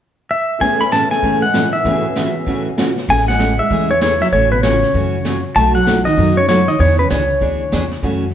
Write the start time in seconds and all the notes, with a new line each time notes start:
0.31 E5
0.59 A2 C#3 E3 A3 B3 C#4 G#4 G#5, brush sweep, kick
0.64 G#4
0.81 C#4 B5
0.91 A2 C#3 E3 A3 C#4 G#4 A5, snare, hi-hat pedal
1.11 A3 G#5, snare
1.22 A2 C#3 E3 A3 C#4 G#4, brush sweep, kick
1.42 G#3 F#5
1.54 A2 C#3 E3 A3 C#4 G#4, snare, hi-hat pedal
1.73 E3 E5
1.79 A2 E3
1.85 A2 C#3 E3 A3 B3 C#4 F#4, brush sweep, kick
1.90 G#4
2.16 A2 C#3 E3 A3 C#4 F#4, snare, hi-hat pedal
2.46 A2 C#3 E3 A3 C#4 F#4, brush sweep, kick
2.78 A2 C#3 E3 A3 C#4 F#4, snare, hi-hat pedal
2.97 snare
3.08 A1 C#3 E3 A3 C#4 G#4 G#5, brush sweep, kick
3.19 snare
3.28 G#3 F#5, snare
3.39 C#3 E3 A3 C#4 G#4, snare, hi-hat pedal
3.59 G#3 E5
3.70 E2 C#3 E3 A3 C#4 G#4, brush sweep, kick
3.91 E3 C#5
4.01 C#3 E3 A3 C#4 G#4 C#5, snare, hi-hat pedal
4.21 F#3 E5, snare
4.32 A1 C#3 E3 A3 C#4 F#4 C#5, brush sweep, kick
4.52 B2 B4
4.63 C#3 E3 A3 C#4 F#4 C#5, snare, hi-hat pedal
4.82 snare
4.94 F#2 C#3 E3 A3 C#4 F#4, brush sweep, kick
5.25 C#3 E3 A3 C#4 F#4, snare, hi-hat pedal
5.55 B1 B2 F#3 A3 D#4 F#4 A5, brush sweep, kick
5.75 F#3 F#5
5.86 B2 F#3 A3 D#4 F#4, snare, hi-hat pedal
6.05 D#3 D#5, snare
6.17 F#2 B2 F#3 A3 D#4 F#4, brush sweep, kick
6.37 C#3 C#5
6.48 B2 F#3 A3 D#4 F#4 C#5, snare, hi-hat pedal
6.68 D#3 D#5, snare
6.79 E2 D3 E3 B3 D4 G#4 C#5, brush sweep, kick
6.99 C#3 B4
7.10 C#2 D3 E3 B3 D4 G#4 C#5, snare, hi-hat pedal
7.41 D2 E3 B3 D4 G#4, brush sweep, kick
7.72 E2 E3 B3 D4 G#4, snare, hi-hat pedal
7.91 snare
8.03 F#2 C#3 E3 A3 C#4 F#4, brush sweep, kick